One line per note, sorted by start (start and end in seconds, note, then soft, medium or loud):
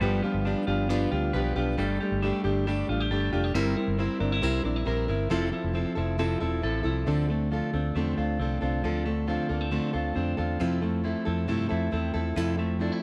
0.01 0.20 G1 loud
0.01 0.23 G2 medium
0.01 0.23 D3 medium
0.01 0.24 F3 medium
0.01 1.78 G3 medium
0.01 0.23 B3 medium
0.01 0.23 D4 medium
0.01 0.22 G4 medium
0.01 1.32 B4 medium
0.22 0.44 F3 medium
0.22 0.45 B3 medium
0.22 0.46 D4 medium
0.22 0.66 F4 medium
0.22 0.45 G4 medium
0.34 0.53 G1 loud
0.45 0.67 F3 medium
0.45 0.68 B3 medium
0.45 0.67 D4 medium
0.45 0.66 G4 medium
0.67 1.05 G1 loud
0.67 0.89 F3 medium
0.67 0.89 B3 medium
0.67 0.89 D4 medium
0.67 1.10 F4 medium
0.67 0.89 G4 medium
0.89 1.11 G2 medium
0.89 1.12 D3 medium
0.89 1.12 F3 loud
0.89 1.12 B3 medium
0.89 1.12 D4 medium
0.89 1.10 G4 loud
1.12 1.31 D2 medium
1.12 1.33 F3 soft
1.12 1.33 B3 soft
1.12 1.34 D4 medium
1.12 1.55 F4 medium
1.12 1.34 G4 medium
1.33 1.53 B1 loud
1.33 1.56 F3 medium
1.33 1.56 B3 medium
1.33 1.56 D4 medium
1.33 1.55 G4 medium
1.33 1.78 B4 medium
1.56 1.75 B1 medium
1.56 1.77 F3 soft
1.56 1.78 B3 medium
1.56 1.78 D4 medium
1.56 1.83 F4 medium
1.56 1.78 G4 medium
1.78 1.97 G1 loud
1.78 2.00 G3 medium
1.78 2.00 A3 medium
1.78 2.00 D4 loud
1.78 1.99 G4 loud
1.78 3.10 A4 medium
2.00 2.22 A3 medium
2.00 2.23 D4 medium
2.00 2.22 G4 medium
2.12 2.30 G1 loud
2.22 2.44 G3 medium
2.22 2.45 A3 medium
2.22 2.44 D4 medium
2.22 2.43 G4 medium
2.44 2.82 G1 loud
2.44 2.66 A3 medium
2.44 2.67 D4 medium
2.44 2.66 G4 medium
2.67 2.89 G3 medium
2.67 2.89 A3 medium
2.67 2.89 D4 medium
2.67 2.88 G4 medium
2.89 3.07 A1 medium
2.89 3.11 A3 medium
2.89 3.11 D4 soft
2.89 3.00 F4 medium
2.89 3.11 G4 medium
3.00 3.32 G4 medium
3.11 3.29 G1 loud
3.11 3.33 G3 medium
3.11 3.33 A3 medium
3.11 3.33 D4 medium
3.11 3.31 G4 medium
3.11 3.55 A4 medium
3.33 3.51 F1 loud
3.33 3.55 A3 medium
3.33 3.55 D4 medium
3.33 3.44 F4 medium
3.33 3.55 G4 medium
3.44 3.59 G4 medium
3.55 3.73 G1 loud
3.55 3.77 G3 medium
3.55 3.77 C4 medium
3.55 3.76 E4 loud
3.55 3.75 A#4 loud
3.77 3.98 C4 medium
3.77 3.99 E4 medium
3.77 3.99 A#4 medium
3.88 4.06 G1 loud
3.98 4.21 G3 medium
3.98 4.21 C4 medium
3.98 4.20 E4 medium
3.98 4.19 A#4 medium
4.20 4.39 G1 loud
4.20 4.41 C4 medium
4.20 4.32 D4 medium
4.20 4.42 E4 medium
4.20 4.42 A#4 medium
4.32 4.65 E4 soft
4.42 4.61 C2 loud
4.42 4.64 G3 medium
4.42 4.65 C4 medium
4.42 4.64 E4 loud
4.42 4.62 A#4 loud
4.64 4.83 A#1 medium
4.64 4.85 C4 medium
4.64 4.76 D4 medium
4.64 4.86 E4 medium
4.64 4.86 A#4 medium
4.76 5.08 E4 medium
4.85 5.05 A#1 loud
4.85 5.08 G3 medium
4.85 5.08 C4 medium
4.85 5.08 E4 medium
4.85 5.07 A#4 medium
5.08 5.28 G1 loud
5.08 5.30 C4 medium
5.08 5.30 E4 medium
5.08 5.31 A#4 medium
5.29 5.50 F1 loud
5.29 5.52 F2 medium
5.29 5.53 C3 loud
5.29 5.52 F3 loud
5.29 5.52 C4 loud
5.29 5.51 E4 medium
5.29 5.50 A4 medium
5.51 5.72 F3 medium
5.51 5.73 C4 medium
5.51 5.74 E4 medium
5.51 5.74 A4 medium
5.64 5.83 F1 loud
5.74 5.96 F3 medium
5.74 5.96 C4 medium
5.74 5.95 E4 medium
5.74 5.94 A4 medium
5.95 6.35 F1 loud
5.95 6.18 F3 soft
5.95 6.18 C4 medium
5.95 6.18 E4 medium
5.95 6.18 A4 medium
6.18 6.41 F2 medium
6.18 6.41 C3 medium
6.18 6.41 F3 medium
6.18 6.41 C4 medium
6.18 6.40 E4 loud
6.18 6.39 A4 loud
6.40 6.60 E1 medium
6.40 6.61 F3 medium
6.40 6.62 C4 medium
6.40 6.62 E4 medium
6.40 6.63 A4 medium
6.62 6.82 A1 loud
6.62 6.85 F3 medium
6.62 6.84 C4 medium
6.62 6.83 E4 medium
6.62 6.82 A4 medium
6.83 7.04 C2 loud
6.83 7.05 F3 soft
6.83 7.06 C4 soft
6.83 7.07 E4 medium
6.83 7.06 A4 medium
7.06 7.60 D2 medium
7.06 7.29 D3 medium
7.06 7.29 F3 medium
7.06 7.29 C4 medium
7.06 7.29 D4 medium
7.06 7.27 A4 medium
7.28 7.95 A3 medium
7.28 7.50 C4 soft
7.28 7.51 D4 medium
7.28 7.51 A4 medium
7.51 7.73 F3 medium
7.51 7.74 C4 medium
7.51 7.73 D4 medium
7.51 8.17 F4 medium
7.51 7.72 A4 medium
7.73 7.92 D2 medium
7.73 7.95 C4 soft
7.73 7.96 D4 medium
7.73 7.95 A4 medium
7.95 8.14 E2 medium
7.95 8.18 D3 medium
7.95 8.18 F3 medium
7.95 9.06 A3 medium
7.95 8.18 C4 medium
7.95 8.17 D4 medium
7.95 8.15 A4 medium
8.17 8.36 D2 medium
8.17 8.39 C4 soft
8.17 8.40 D4 medium
8.17 8.62 F4 medium
8.17 8.39 A4 medium
8.39 8.58 C2 medium
8.39 8.62 F3 medium
8.39 8.62 C4 medium
8.39 8.61 D4 medium
8.39 8.60 A4 medium
8.61 8.81 C2 medium
8.61 8.83 C4 soft
8.61 8.84 D4 medium
8.61 9.27 F4 medium
8.61 8.83 A4 medium
8.83 9.36 D2 loud
8.83 9.06 D3 medium
8.83 9.06 F3 medium
8.83 9.06 C4 medium
8.83 9.06 D4 medium
8.83 9.04 A4 medium
9.06 9.71 A3 medium
9.06 9.27 C4 soft
9.06 9.28 D4 medium
9.06 9.28 A4 medium
9.27 9.50 F3 medium
9.27 9.50 C4 medium
9.27 9.49 D4 medium
9.27 9.93 F4 medium
9.27 9.48 A4 medium
9.49 9.78 D2 medium
9.49 9.61 A#3 medium
9.49 9.71 C4 soft
9.49 9.71 D4 soft
9.49 9.71 A4 medium
9.61 10.15 C4 soft
9.71 9.94 D3 medium
9.71 9.94 F3 medium
9.71 10.82 A3 medium
9.71 9.94 C4 medium
9.71 9.93 D4 medium
9.71 9.92 A4 medium
9.93 10.13 D2 medium
9.93 10.15 C4 soft
9.93 10.16 D4 medium
9.93 10.38 F4 medium
9.93 10.16 A4 medium
10.15 10.35 F2 medium
10.15 10.38 F3 medium
10.15 10.38 C4 medium
10.15 10.37 D4 medium
10.15 10.36 A4 medium
10.37 10.57 E2 medium
10.37 10.59 C4 soft
10.37 10.60 D4 medium
10.37 11.04 F4 medium
10.37 10.60 A4 medium
10.59 10.82 F2 medium
10.59 11.13 F2 loud
10.59 10.82 C3 medium
10.59 10.82 F3 medium
10.59 10.82 C4 medium
10.59 10.81 E4 medium
10.59 10.80 A4 medium
10.81 11.03 F3 soft
10.81 11.48 A3 medium
10.81 11.04 C4 soft
10.81 11.04 E4 medium
10.81 11.04 A4 medium
11.04 11.26 F3 medium
11.04 11.26 C4 medium
11.04 11.25 E4 medium
11.04 11.24 A4 medium
11.25 11.46 F2 loud
11.25 11.47 F3 soft
11.25 11.48 C4 soft
11.25 11.47 E4 medium
11.25 11.48 A4 medium
11.47 11.70 F2 medium
11.47 11.68 G2 medium
11.47 11.70 C3 medium
11.47 11.70 F3 medium
11.47 12.58 A3 medium
11.47 11.69 C4 medium
11.47 11.68 E4 medium
11.47 11.68 A4 loud
11.69 11.90 F2 medium
11.69 11.90 F3 medium
11.69 11.91 C4 medium
11.69 11.92 E4 medium
11.69 11.92 A4 medium
11.91 12.12 E2 medium
11.91 12.14 F3 medium
11.91 12.14 C4 medium
11.91 12.14 E4 medium
11.91 12.12 A4 medium
12.14 12.33 E2 medium
12.14 12.36 F3 soft
12.14 12.36 C4 soft
12.14 12.36 E4 medium
12.14 12.36 A4 medium
12.36 12.58 F2 medium
12.36 12.89 F2 loud
12.36 12.59 C3 medium
12.36 12.59 F3 medium
12.36 12.58 C4 medium
12.36 12.57 E4 loud
12.36 12.56 A4 medium
12.57 12.78 F3 medium
12.57 13.03 A3 medium
12.57 12.79 C4 soft
12.57 12.80 E4 medium
12.57 12.80 A4 medium
12.79 13.02 F3 medium
12.79 13.02 C4 medium
12.79 12.92 D4 medium
12.79 13.01 E4 medium
12.79 13.00 A4 medium
12.92 13.03 E4 medium